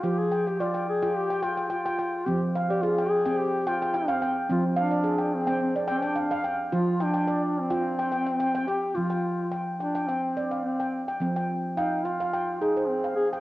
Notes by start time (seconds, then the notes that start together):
Already playing: G5
0.03 F3 F4 G4
0.18 G#4
0.32 G5
0.47 G4 G5
0.60 F4 D5
0.74 G5
0.89 G#4
1.03 F4 G5
1.16 G4
1.30 G5
1.43 F4 G5
1.57 G5
1.70 F4 G5
1.86 G5
1.99 G5
2.26 F3 C4 G4
2.55 F5
2.69 G4 D5
2.82 F4 G#4
2.98 G5
3.09 G#4
3.25 C4 G5
3.39 G4
3.67 F4 G5
3.82 G5
3.94 C4 G5
4.08 F5
4.22 G5
4.49 F3 C4 F4
4.76 D4 F5
4.91 D5
5.04 G#4
5.18 G5
5.35 C4
5.47 C4 G5
5.62 C4
5.76 D5
5.88 D4 G5
6.02 G5
6.15 F5
6.31 F5
6.44 G5
6.72 F3 F4
7.00 D4 G5
7.14 G5
7.28 D5
7.61 C4
7.71 F4 G5
7.99 G5
8.12 G5
8.27 G5
8.40 G5
8.55 G5
8.68 G4 G5
8.95 F3 F4
9.10 G5
9.52 G5
9.79 D4 G5
9.95 G5
10.02 D4
10.07 C4 G5
10.37 D5
10.51 F5
10.64 C4
10.80 G5
11.08 G5
11.20 F3 C4
11.36 G5
11.76 D#4 F5 G5
12.04 F4 F5
12.20 F5
12.33 G5
12.61 D#4 G#4
12.77 C5
12.88 C4
13.04 F5
13.16 G#4
13.33 G5